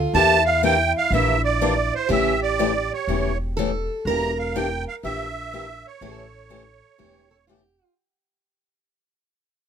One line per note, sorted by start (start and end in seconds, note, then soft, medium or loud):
0.00 0.12 F4 medium
0.14 0.92 E2 medium
0.14 0.36 E3 medium
0.14 0.36 A#3 medium
0.14 0.37 D4 medium
0.14 2.16 E4 medium
0.14 0.37 G4 medium
0.14 0.44 A5 loud
0.46 0.62 F5 medium
0.63 0.75 E3 medium
0.63 0.74 A#3 medium
0.63 0.75 D4 medium
0.63 0.75 G4 medium
0.63 0.93 G5 medium
0.98 1.12 F5 medium
1.11 1.90 A#1 medium
1.11 1.34 E3 medium
1.11 1.35 A#3 medium
1.11 1.34 D4 medium
1.11 1.35 G4 medium
1.11 1.42 E5 medium
1.44 1.94 D5 medium
1.61 1.73 E3 medium
1.61 1.73 A#3 medium
1.61 1.73 D4 medium
1.61 1.73 G4 medium
1.95 2.10 C5 medium
2.09 2.88 A1 medium
2.09 2.32 C#3 medium
2.09 2.32 E3 medium
2.09 2.32 A3 medium
2.09 2.32 C#4 medium
2.09 3.56 G4 medium
2.09 2.32 G4 medium
2.09 2.40 E5 medium
2.43 2.93 D5 medium
2.59 2.71 C#3 medium
2.59 2.71 E3 medium
2.59 2.71 A3 medium
2.59 2.71 C#4 medium
2.59 2.71 G4 medium
2.94 3.38 C#5 medium
3.07 3.86 E1 medium
3.07 3.30 C#3 medium
3.07 3.30 E3 medium
3.07 3.30 A3 medium
3.07 3.31 C#4 medium
3.07 3.31 G4 medium
3.57 3.69 C#3 medium
3.57 3.69 E3 medium
3.57 3.70 A3 medium
3.57 3.69 C#4 medium
3.57 3.70 G4 medium
3.57 4.07 A4 medium
4.05 4.84 E1 medium
4.05 4.29 E3 medium
4.05 4.29 A#3 medium
4.05 4.29 D4 medium
4.05 5.98 A#4 loud
4.05 4.38 A#5 medium
4.09 4.30 G4 medium
4.39 4.56 F5 medium
4.55 4.67 E3 medium
4.55 4.67 A#3 medium
4.55 4.67 D4 medium
4.55 4.67 G4 medium
4.55 4.84 G5 medium
4.88 4.96 F5 medium
5.03 5.82 A#1 medium
5.03 5.25 E3 medium
5.03 5.26 A#3 medium
5.03 5.26 D4 medium
5.03 5.26 G4 medium
5.03 5.87 E5 medium
5.53 5.64 E3 medium
5.53 5.65 A#3 medium
5.53 5.65 D4 medium
5.53 5.65 G4 medium
5.87 7.46 C#5 medium
6.01 6.80 A1 medium
6.01 6.23 C#3 medium
6.01 6.23 E3 medium
6.01 6.23 A3 medium
6.01 6.24 C#4 medium
6.01 6.24 G4 medium
6.01 6.98 A4 medium
6.50 6.62 C#3 medium
6.50 6.62 E3 medium
6.50 6.62 A3 medium
6.50 6.62 C#4 medium
6.50 6.62 G4 medium
6.98 7.78 E1 medium
6.98 7.21 C#3 medium
6.98 7.21 E3 medium
6.98 7.21 A3 medium
6.98 7.21 C#4 medium
6.98 7.30 G4 medium
6.98 7.21 G4 medium
7.31 7.36 A4 medium
7.47 7.60 C#3 medium
7.47 7.60 E3 medium
7.47 7.60 A3 medium
7.47 7.60 C#4 medium
7.47 7.93 G4 medium
7.47 7.60 G4 medium